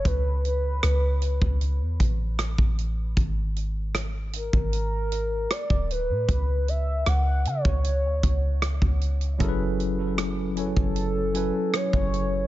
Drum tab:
HH |x-x-x-x-x-x-x-x-|x-x-x-x-x-x-x-x-|x-x-x-x-x-x-x-xx|x-x-x-x-x-x-x-x-|
SD |----r-------r---|----r-------r---|----r-------r---|----r-------r---|
BD |o------o--o--o--|o------o-----o--|o------o--o--o--|o------o-----o--|